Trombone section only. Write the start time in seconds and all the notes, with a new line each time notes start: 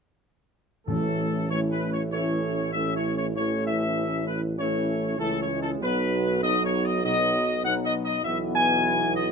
0.87 E3 A3
1.49 E3 A3
2.12 E3 A3
2.74 E3 A3
3.36 E3 A3
4.58 E3 A3
5.18 E3 A3
5.49 G#3
5.81 B2 F#3
6.44 B2 F#3
7.04 B2 F#3
7.64 B2 F#3
8.25 B2 E3